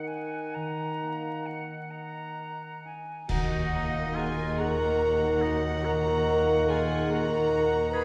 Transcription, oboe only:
0.00 2.93 F#5 soft
3.31 4.16 D#4 medium
4.15 4.61 F4 medium
4.59 5.43 F#4 medium
5.41 5.87 D#4 medium
5.85 6.71 F#4 medium
6.70 7.11 F4 medium
7.11 7.91 F#4 medium
7.93 8.04 G#4 medium

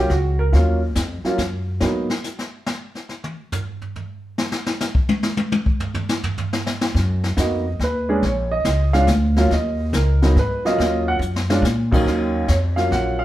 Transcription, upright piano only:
0.00 0.10 G4 medium
0.12 0.39 F#4 medium
0.39 0.48 A#4 medium
0.52 0.79 F#3 medium
0.52 0.79 A#3 medium
0.52 0.79 C#4 medium
0.52 0.79 F4 medium
1.25 1.37 F#3 medium
1.25 1.38 A#3 medium
1.25 1.38 C#4 medium
1.25 1.38 F4 medium
1.81 2.07 F#3 medium
1.81 2.07 A#3 medium
1.81 2.07 B3 medium
1.81 2.08 D#4 medium
7.37 7.63 A#3 medium
7.37 7.63 B3 soft
7.37 7.63 D#4 soft
7.37 7.63 F#4 medium
7.37 7.78 D#5 medium
7.84 8.21 B4 medium
8.09 8.21 G#3 medium
8.09 8.21 C#4 medium
8.09 8.21 D4 medium
8.09 8.22 G#4 medium
8.25 8.52 C#5 medium
8.51 8.91 D#5 loud
8.93 9.06 G#3 medium
8.93 9.06 C#4 medium
8.93 9.07 D4 medium
8.93 9.06 F4 medium
8.93 9.07 F5 loud
9.37 9.49 F#3 medium
9.37 9.49 A#3 medium
9.37 9.49 C#4 medium
9.37 9.50 F4 medium
9.52 9.91 D#5 medium
9.95 10.33 A#4 medium
10.22 10.34 F#3 medium
10.22 10.35 A#3 medium
10.22 10.35 B3 medium
10.22 10.35 D#4 medium
10.39 10.65 B4 medium
10.65 11.18 F#3 medium
10.65 11.18 A#3 medium
10.65 11.19 C#4 medium
10.65 11.19 F4 medium
10.65 11.05 D#5 loud
11.08 11.16 F#5 loud
11.50 11.62 G#3 medium
11.50 11.62 C#4 medium
11.50 11.63 D4 medium
11.50 11.62 F4 medium
11.92 12.45 D#2 medium
11.92 12.46 F#3 medium
11.92 12.46 A#3 medium
11.92 12.46 C#4 medium
11.92 12.46 D#4 loud
12.48 12.54 C#5 medium
12.76 13.25 F#3 medium
12.76 13.25 A#3 medium
12.76 13.25 C#4 medium
12.76 13.25 F4 medium
12.76 12.90 F5 medium
12.92 13.18 F#5 medium
13.19 13.25 F5 loud

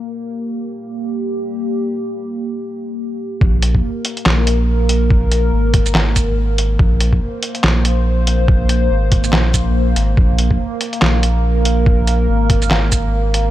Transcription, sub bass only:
3.41 3.82 A#1 loud
4.26 5.51 A#1 loud
5.53 5.93 G#1 loud
5.95 6.78 G#1 loud
6.79 7.20 A#1 loud
7.63 8.89 A#1 loud
8.90 9.31 G#1 medium
9.33 9.95 A#1 loud
9.96 10.16 G#1 loud
10.17 10.58 A#1 loud
11.02 12.27 A#1 loud
12.29 12.69 G#1 loud
12.71 13.51 G#1 medium

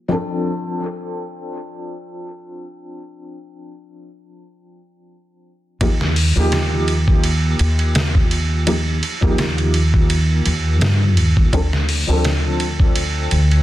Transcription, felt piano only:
0.08 5.77 F3 medium
0.08 5.77 C4 medium
0.08 5.78 D4 medium
0.08 5.78 A4 medium
5.81 5.93 F3 medium
5.81 5.93 A#3 medium
5.81 5.94 D#4 medium
5.81 5.94 G4 medium
6.36 8.63 F3 medium
6.36 8.63 A#3 medium
6.36 8.64 D#4 medium
6.36 8.64 G4 loud
8.67 8.79 F3 medium
8.67 8.79 A#3 medium
8.67 8.79 D#4 medium
8.67 8.80 G4 medium
9.21 11.48 F3 medium
9.21 11.49 A#3 medium
9.21 11.49 D#4 medium
9.21 11.50 G4 medium
11.53 11.65 F3 medium
11.53 11.65 C4 medium
11.53 11.65 D4 medium
11.53 11.66 A4 medium
12.07 13.63 F3 loud
12.07 13.63 C4 medium
12.07 13.63 D4 medium
12.07 13.63 A4 loud

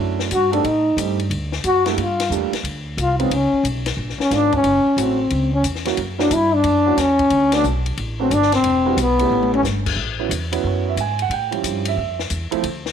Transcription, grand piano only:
0.00 0.28 F#3 medium
0.00 0.28 A3 medium
0.00 0.28 C#4 medium
0.00 0.28 D4 medium
0.00 0.28 E4 medium
0.52 0.63 G3 medium
0.52 0.63 A3 medium
0.52 0.63 C4 medium
0.52 0.63 D#4 medium
0.52 0.63 A4 medium
0.97 1.17 G3 medium
0.97 1.17 A3 medium
0.97 1.17 C4 medium
0.97 1.17 D#4 medium
0.97 1.17 G4 medium
1.86 1.96 G3 medium
1.86 1.97 A3 medium
1.86 1.96 A#3 medium
1.86 1.97 D4 medium
1.86 1.97 E4 medium
2.30 2.50 G3 medium
2.30 2.50 A3 medium
2.30 2.51 A#3 medium
2.30 2.51 D4 medium
2.30 2.51 F4 medium
3.19 3.30 G#3 medium
3.19 3.30 B3 medium
3.19 3.30 C#4 medium
3.19 3.30 D#4 medium
3.19 3.30 F4 medium
4.30 4.64 G#3 medium
4.30 4.64 B3 soft
4.30 4.64 C#4 soft
4.30 4.64 D#4 soft
4.30 4.65 F4 medium
4.97 5.17 F#3 medium
4.97 5.17 A3 medium
4.97 5.17 C#4 medium
4.97 5.17 E4 medium
4.97 5.17 F#4 medium
5.85 5.96 F#3 medium
5.85 5.97 A#3 medium
5.85 5.97 C#4 medium
5.85 5.97 E4 medium
5.85 5.97 F#4 medium
6.19 6.30 F#3 medium
6.19 6.30 A#3 medium
6.19 6.30 C#4 medium
6.19 6.30 E4 medium
6.19 6.30 F#4 medium
6.86 6.96 F#3 medium
6.86 6.97 A#3 medium
6.86 6.97 C#4 medium
6.86 6.97 E4 medium
6.86 6.97 F#4 medium
7.52 7.63 A3 medium
7.52 7.63 B3 medium
7.52 7.64 C#4 medium
7.52 7.64 D4 medium
7.52 7.64 F#4 medium
8.19 8.30 A3 medium
8.19 8.30 B3 medium
8.19 8.30 C#4 medium
8.19 8.30 D4 medium
8.19 8.31 F#4 medium
8.85 8.96 G3 medium
8.85 8.96 B3 medium
8.85 8.97 D4 medium
8.85 8.97 E4 medium
8.85 8.97 F#4 medium
9.19 9.62 A3 medium
9.19 9.62 B3 medium
9.19 9.62 C#4 medium
9.19 9.62 E4 medium
9.19 9.62 G4 medium
10.19 10.30 F#3 medium
10.19 10.30 B3 medium
10.19 10.30 C#4 medium
10.19 10.30 E4 medium
10.52 10.95 F#3 medium
10.52 10.95 B3 medium
10.52 10.95 C#4 medium
10.52 10.95 E4 medium
10.67 10.87 C#5 medium
10.89 10.99 E5 medium
11.01 11.20 G#5 medium
11.22 11.32 F#5 medium
11.33 11.83 G5 medium
11.51 11.94 F3 medium
11.51 11.95 G3 soft
11.51 11.95 C#4 soft
11.51 11.95 E4 medium
11.88 12.18 E5 medium
12.51 12.62 F3 medium
12.51 12.62 A3 medium
12.51 12.62 C4 medium
12.51 12.63 E4 medium

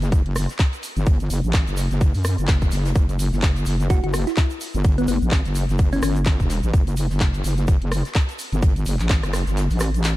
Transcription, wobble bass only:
0.00 0.24 F#1 medium
0.26 0.47 F#1 medium
0.97 1.29 G1 medium
1.30 1.42 F#1 medium
1.44 1.65 A1 medium
1.68 1.89 F#1 medium
1.91 2.13 F#1 medium
2.15 2.36 F#2 medium
2.38 2.70 F#1 medium
2.72 2.94 F#1 loud
2.96 3.31 F#1 medium
3.33 3.65 F#1 loud
3.66 4.02 F#1 loud
4.04 4.25 F#1 medium
4.75 5.07 G1 loud
5.08 5.20 F#1 loud
5.22 5.43 A1 loud
5.45 5.67 F#1 medium
5.69 6.01 F#1 loud
6.03 6.38 G1 medium
6.40 6.61 E1 medium
6.63 6.72 A1 loud
6.74 7.09 F#1 medium
7.11 7.43 F#1 medium
7.44 7.79 F#1 loud
7.82 8.03 F#1 medium
8.52 8.85 G1 loud
8.86 8.98 F#1 medium
9.00 9.21 A1 medium
9.23 9.45 F#1 medium
9.47 9.68 G1 loud
9.71 10.16 A1 loud

